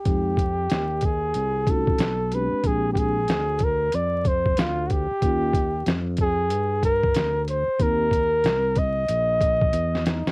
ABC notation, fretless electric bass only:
X:1
M:4/4
L:1/16
Q:"Swing 16ths" 1/4=93
K:Fm
V:1 name="Fretless electric bass" clef=bass
F,,4 E,,4 C,,4 =B,,,3 z | B,,,4 =D,,4 F,,4 D,,3 z | E,,4 F,,4 G,,4 =D,,3 z | E,,4 C,,4 B,,,4 =E,,3 z |]